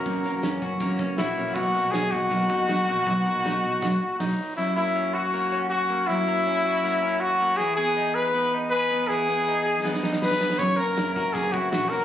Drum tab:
CC |----------------|----------------|--------x---x---|----------------|
RD |----------------|----------------|----------------|----------------|
HH |x-x-x-x-x-x-x-o-|x-x-x-x-x-x-x-o-|x-x-x-x---------|----------------|
SD |----o-------o---|----o-------o---|----o---o---o---|----------------|
BD |o-----o-o-o-----|o-----o-o-o-----|o-------o---o---|----------------|

CC |----------------|----------------|----------------|----------------|
RD |----------------|----------------|----------------|x-x-x-x-x-x-x-x-|
HH |----------------|----------------|----------------|--------------o-|
SD |----------------|----------------|--------oooooooo|----o-------o---|
BD |----------------|----------------|----------------|o-----o-o-o-----|